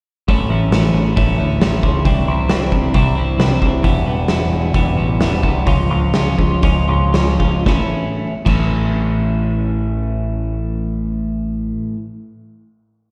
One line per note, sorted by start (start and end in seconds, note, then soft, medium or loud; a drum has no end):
0.28 0.49 A1 medium
0.28 0.73 A2 medium
0.28 0.72 E3 medium
0.28 0.51 A3 medium
0.28 0.50 C#4 medium
0.28 0.50 E4 medium
0.28 kick medium
0.28 open hi-hat soft
0.49 0.70 A1 medium
0.49 0.72 A3 medium
0.49 0.72 C#4 medium
0.49 0.74 E4 medium
0.71 0.92 A1 medium
0.71 1.16 E3 medium
0.71 1.16 A3 medium
0.71 1.17 C#4 medium
0.71 1.18 E4 medium
0.71 snare medium
0.71 open hi-hat soft
0.93 1.14 A1 medium
1.16 1.38 A1 medium
1.16 1.61 A2 medium
1.16 1.60 E3 medium
1.16 1.39 A3 medium
1.16 1.38 C#4 medium
1.16 1.37 E4 medium
1.16 kick loud
1.16 open hi-hat soft
1.38 1.59 D2 medium
1.38 1.60 A3 medium
1.38 1.61 C#4 medium
1.38 1.62 E4 medium
1.60 1.81 A1 medium
1.60 2.05 E3 medium
1.60 1.84 A3 medium
1.60 1.83 C#4 medium
1.60 1.82 E4 medium
1.60 snare loud
1.60 open hi-hat soft
1.83 2.04 C#2 medium
1.83 2.06 A3 soft
1.83 2.05 C#4 medium
1.83 2.07 E4 medium
1.83 kick medium
2.05 2.26 C2 medium
2.05 2.50 C3 medium
2.05 2.48 E3 medium
2.05 2.29 G3 medium
2.05 2.27 C4 loud
2.05 2.27 E4 medium
2.05 kick loud
2.05 open hi-hat soft
2.27 2.49 C2 medium
2.27 2.49 G3 soft
2.27 2.49 C4 medium
2.27 2.50 E4 medium
2.48 2.71 C2 medium
2.48 2.93 E3 medium
2.48 2.94 G3 medium
2.48 2.94 C4 medium
2.48 2.95 E4 medium
2.48 snare loud
2.48 open hi-hat soft
2.72 2.93 C2 medium
2.72 kick medium
2.94 3.15 C2 medium
2.94 3.39 C3 medium
2.94 3.37 E3 medium
2.94 3.17 G3 medium
2.94 3.15 C4 medium
2.94 3.14 E4 medium
2.94 kick loud
2.94 open hi-hat soft
3.15 3.38 C2 medium
3.15 3.37 G3 medium
3.15 3.38 C4 medium
3.15 3.38 E4 medium
3.38 3.60 C2 medium
3.38 3.82 E3 medium
3.38 3.62 G3 medium
3.38 3.60 C4 medium
3.38 3.60 E4 medium
3.38 snare loud
3.38 open hi-hat soft
3.61 3.82 C2 medium
3.61 3.83 G3 medium
3.61 3.83 C4 medium
3.61 3.83 E4 medium
3.61 kick medium
3.83 4.05 E1 medium
3.83 4.28 E2 medium
3.83 4.29 B2 medium
3.83 4.07 E3 medium
3.83 4.06 G3 medium
3.83 4.05 B3 medium
3.83 4.05 E4 loud
3.83 kick loud
3.83 open hi-hat soft
4.06 4.27 E1 medium
4.06 4.27 E3 medium
4.06 4.28 G3 medium
4.06 4.29 B3 medium
4.06 4.29 E4 medium
4.28 4.50 E1 medium
4.28 4.74 E3 medium
4.28 4.74 G3 medium
4.28 4.74 B3 medium
4.28 4.75 E4 medium
4.28 snare medium
4.28 open hi-hat soft
4.52 4.73 E1 medium
4.74 4.95 E1 medium
4.74 5.20 E2 medium
4.74 5.20 B2 medium
4.74 4.98 E3 medium
4.74 4.97 G3 medium
4.74 4.96 B3 loud
4.74 4.96 E4 medium
4.74 kick medium
4.74 open hi-hat soft
4.97 5.18 A1 medium
4.97 5.20 E3 medium
4.97 5.21 G3 medium
4.97 5.21 B3 medium
4.97 5.22 E4 medium
5.20 5.41 E1 medium
5.20 5.44 E3 medium
5.20 5.43 G3 medium
5.20 5.42 B3 medium
5.20 5.42 E4 medium
5.20 snare medium
5.20 open hi-hat soft
5.43 5.65 C2 medium
5.43 5.66 E3 soft
5.43 5.66 G3 medium
5.43 5.66 B3 medium
5.43 5.65 E4 medium
5.43 kick medium
5.66 5.88 C#2 medium
5.66 6.14 C#3 medium
5.66 6.13 F3 medium
5.66 5.91 G#3 medium
5.66 5.90 C#4 medium
5.66 5.89 F4 loud
5.66 kick loud
5.66 open hi-hat soft
5.90 6.13 C#2 medium
5.90 6.14 G#3 soft
5.90 6.15 C#4 medium
5.90 6.15 F4 medium
6.14 6.37 C#2 medium
6.14 6.62 F3 medium
6.14 6.63 G#3 medium
6.14 6.63 C#4 medium
6.14 6.64 F4 medium
6.14 snare loud
6.14 open hi-hat soft
6.38 6.61 C#2 medium
6.38 kick medium
6.63 6.86 C#2 medium
6.63 7.13 C#3 medium
6.63 7.12 F3 medium
6.63 6.89 G#3 medium
6.63 6.88 C#4 medium
6.63 6.87 F4 medium
6.63 kick loud
6.63 open hi-hat soft
6.88 7.12 C#2 medium
6.88 7.13 G#3 medium
6.88 7.14 C#4 medium
6.88 7.14 F4 medium
7.13 7.38 C#2 medium
7.13 7.64 F3 medium
7.13 7.41 G#3 medium
7.13 7.40 C#4 medium
7.13 7.38 F4 medium
7.13 snare medium
7.13 open hi-hat soft
7.39 7.64 C#2 medium
7.39 7.65 G#3 soft
7.39 7.65 C#4 medium
7.39 7.64 F4 medium
7.39 kick medium
7.66 7.81 A1 medium
7.66 8.34 A2 medium
7.66 8.34 E3 medium
7.66 8.34 A3 medium
7.66 8.34 C#4 loud
7.66 8.34 E4 medium
7.66 kick medium
7.66 snare medium
8.45 11.71 A1 medium
8.45 11.95 A2 medium
8.45 11.96 E3 medium
8.45 11.98 A3 medium
8.45 11.98 C#4 medium
8.45 11.99 E4 medium
8.45 kick medium
8.45 crash medium